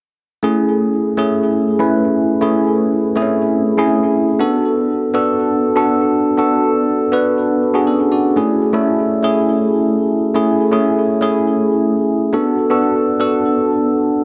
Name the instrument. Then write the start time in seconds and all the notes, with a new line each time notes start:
tine electric piano
0.43 A3 C#4 E4 G#4
1.17 A3 C#4 E4 G#4
1.79 A3 C#4 E4 B4
2.41 A3 C#4 E4 G#4
3.16 A3 C4 E4 G#4
3.22 C#4
3.78 A3 C#4 E4 G#4
4.39 B3 D4 F#4 A4
5.14 B3 D4 F#4 A4
5.76 B3 D4 F#4 A4
6.38 B3 D4 F#4 A4
7.12 B3 D4 F#4 B4
7.74 B3 D4 F#4 G#4
7.87 C#4 A4
8.12 F#4 D5
8.36 A3 C#4 E4 G#4
8.73 A3 C#4 E4 A4
9.23 A3 C#4 E4 G#4
10.34 A3 C#4 E4 G#4
10.71 A3 C#4 E4 G#4
11.21 A3 C#4 E4 G#4
12.33 B3 D4 F#4 A4
12.70 B3 D4 F#4 A4
13.20 B3 D4 F#4 A4